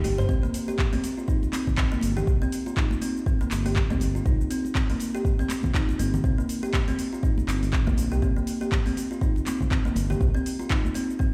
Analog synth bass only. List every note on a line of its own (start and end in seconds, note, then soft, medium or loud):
0.04 0.24 G1 medium
0.29 0.40 C2 loud
2.03 2.23 G1 medium
2.27 2.38 C2 loud
3.51 3.85 G1 loud
3.90 3.98 D#2 medium
4.01 4.21 G1 medium
4.26 4.37 C2 loud
5.99 6.19 G1 medium
6.24 6.35 C2 loud
7.48 7.72 G1 loud
7.73 7.93 G1 medium
7.97 8.08 A#1 loud
8.11 8.20 C2 medium
8.22 8.33 C2 loud
9.95 10.16 G1 medium
10.21 10.32 C2 loud